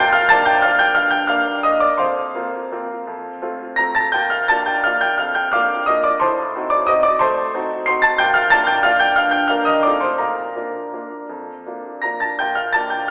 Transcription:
grand piano
Already playing: G5 G6
0.00 A#2
0.13 F5 F6
0.29 F3 A#3 D4 A5 A6
0.45 G5 G6
0.62 F3 A#3 D4 F5 F6
0.79 G5 G6
0.95 G2 F5 F6
1.11 G5 G6
1.27 A#3 D4 F5 F6
1.63 A#3 D4 D#5 D#6
1.80 D5 D6
1.98 F2 C5 F5 C6
2.35 A#3 C4 F4
2.72 A#3 C4 F4
3.07 F2
3.42 A3 C4 F4
3.76 A3 C4 F4 A#5 A#6
3.95 A5 A6
4.12 A#2 G5 G6
4.30 F5 F6
4.48 A#3 D4 F4 A5 A6
4.66 G5 G6
4.84 A#3 D4 F4 F5 F6
5.01 G5 G6
5.18 F2 F5 F6
5.35 G5 G6
5.52 A#3 D4 F4 F5 D6 F6
5.86 A#3 D4 F4 D#5 D#6
6.04 D5 D6
6.20 A2 C5 A5 C6
6.56 C4 D#4 F#4
6.70 D5 D6
6.87 C4 D#4 F#4 D#5 D#6
7.03 D5 D6
7.19 A3 C5 A5 C6
7.54 C4 D#4 F#4
7.86 C4 D#4 F#4 C6 C7
8.02 A5 A6
8.18 A#2 G5 G6
8.34 F5 F6
8.50 A#3 D4 F4 A5 A6
8.67 G5 G6
8.83 A#3 D4 F4 F5 F6
9.00 G5 G6
9.16 G2 F5 F6
9.31 G5 G6
9.48 A#3 D4 A#4 F5 F6
9.65 D#5 D#6
9.83 F2 A3 D#4 F4 D5 D6
10.01 C5 C6
10.18 A#2 A#4 F5 A#5
10.56 A#3 D4 F4
10.93 A#3 D4 F4
11.29 F2
11.66 A#3 D4 F4
12.02 A#3 D4 F4 A#5 A#6
12.20 A5 A6
12.39 A#2 G5 G6
12.55 F5 F6
12.73 A#3 D4 F4 A5 A6
12.90 G5 G6

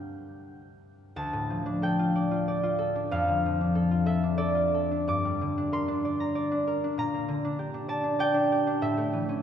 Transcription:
harp
Already playing: G2 G3 D4 A#4 G5 G6
1.16 D2 A5
1.33 A2
1.50 F3
1.66 D4
1.82 A4 G5
1.99 F4
2.16 D5
2.31 F4
2.48 D5
2.63 F4
2.79 A4
2.96 D4
3.11 F2 F5
3.28 D3
3.46 F3
3.61 D4
3.75 A4
3.91 F4
4.06 A4 E5
4.23 D4
4.38 A4 D5
4.55 F4
4.74 A4
4.91 D4
5.08 G2 D6
5.25 G3
5.41 D3
5.58 D4
5.72 A#4 C6
5.88 D4
6.05 D5
6.20 A#5
6.35 D5
6.51 D4
6.67 A#4
6.84 D4
6.98 A#2 A#5
7.14 A#3
7.28 D3
7.45 D4
7.59 G4
7.74 D4
7.88 D5 A5
8.04 D4
8.19 D5 G5
8.34 D4
8.52 G4
8.67 D4
8.82 A2 E5
8.97 A3
9.13 E3
9.29 C#4

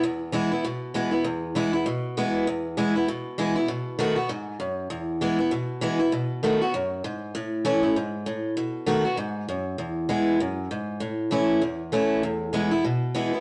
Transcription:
steel-string acoustic guitar
0.03 E2
0.32 E3 G#3 B3 E4
0.52 B3 E4
0.64 B2
0.94 E3 G#3 B3 E4
1.11 B3 E4
1.24 E2
1.55 E3 G#3 B3 E4
1.73 B3 E4
1.86 B2
2.17 E3 G#3 B3 E4
2.47 E2
2.77 E3 G#3 B3 E4
2.96 B3 E4
3.08 B2
3.38 E3 G#3 B3 E4
3.56 B3 E4
3.68 B2
3.99 D#3 A3 B3 F#4
4.16 B3 F#4
4.29 G#2
4.60 F#2
4.90 E2
5.21 E3 G#3 B3 E4
5.39 B3 E4
5.51 B2
5.81 E3 G#3 B3 E4
5.99 B3 E4
6.12 B2
6.43 D#3 A3 B3 F#4
6.61 B3 F#4
6.74 F#2
7.04 G#2
7.35 A2
7.65 E3 A3 C#4 E4
7.83 C#4 E4
7.96 G#2
8.26 A2
8.57 B2
8.86 D#3 A3 B3 F#4
9.05 B3 F#4
9.17 G#2
9.49 F#2
9.78 E2
10.09 E3 G#3 B3 E4
10.40 F#2
10.71 G#2
11.00 A2
11.31 E3 A3 C#4 E4
11.62 E2
11.92 E3 A3 C#4 E4
12.23 E2
12.53 E3 G#3 B3 E4
12.71 B3 E4
12.85 B2
13.15 E3 G#3 B3 E4
13.33 B3 E4

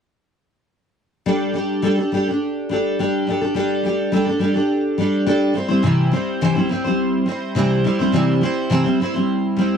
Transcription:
steel-string acoustic guitar
1.26 G3 D4 G4 A4
1.54 G3 D4 G4 A4
1.82 G3 D4 G4 A4
1.97 D4 G4 A4
2.12 G3 D4 G4 A4
2.28 D4 G4 A4
2.69 G3 D4 G4 A4
2.99 G3 D4 G4 A4
3.27 G3 D4 G4 A4
3.41 D4 G4 A4
3.55 G3 D4 G4 A4
3.84 G3 D4 G4 A4
4.12 G3 D4 G4 A4
4.26 D4 G4 A4
4.39 G3 D4 G4 A4
4.54 D4 G4 A4
4.98 G3 D4 G4 A4
5.27 G3 D4 G4 A4
5.54 G3 C4 E4 C5
5.68 G3 C4 E4 C5
5.83 C3 E3 G3 C4 E4 C5
6.12 G3 C4 E4 C5
6.41 C3 E3 G3 C4 E4 C5
6.55 G3 C4 E4 C5
6.69 G3 C4 E4 C5
6.84 G3 C4 E4 C5
7.26 G3 C4 E4 C5
7.55 C3 E3 G3 C4 E4 C5
7.84 G3 C4 E4 C5
7.99 G3 C4 E4 C5
8.12 C3 E3 G3 C4 E4 C5
8.41 G3 C4 E4 C5
8.70 C3 E3 G3 C4 E4 C5
8.84 G3 C4 E4 C5
9.00 G3 C4 E4 C5
9.14 G3 C4 E4 C5
9.56 G3 C4 E4 C5

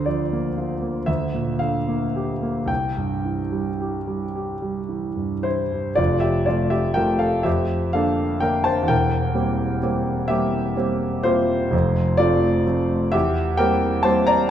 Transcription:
grand piano
Already playing: D2 D3 C5
0.06 F3 D5
0.33 A#3
0.58 F4
0.82 A#3
1.06 D2 E5
1.34 A#2
1.59 D3 F5
1.88 A#3
2.16 G4
2.43 A#3
2.66 C2 G5
2.97 G2
3.25 E3
3.52 G3
3.80 G4
4.07 G3
4.35 G4
4.62 G3
4.89 E3
5.16 G2
5.43 E3 E4 C5
5.72 G2
5.95 F1 F2 F4 D5
6.20 G4 E5
6.46 C3 A3 F4 D5
6.70 G4 E5
6.94 C3 A3 F4 A#4 G5
7.19 A4 F5
7.43 F2 G4 E5
7.93 D3 A#3 D4 A4 F5
8.40 D3 A#3 D4 A#4 G5
8.64 C5 A5
8.83 E2
8.88 E1 A#4 G5
9.34 G3 A#3 C4
9.82 G3 A#3 C4
10.28 G3 A#3 C4 G4 E5
10.76 G3 A#3 C4
11.23 G3 A#3 C4 F4 C5
11.71 F1 F2
12.17 F3 A3 C4 F4 D5
12.66 F3 A3 C4
13.12 E2 G4 E5
13.57 G3 A#3 C4 A#4 G5
14.03 G3 A#3 C4 C5 A5
14.27 D5 A#5

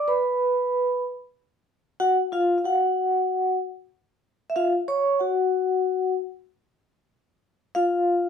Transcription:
vibraphone
0.08 B4 B5
2.00 F#4 F#5
2.32 F4 F5
2.58 F5
2.64 F#4 F#5
4.50 E5
4.56 F4 F5
4.88 C#5 C#6
5.19 F#4 F#5
7.75 F4 F5

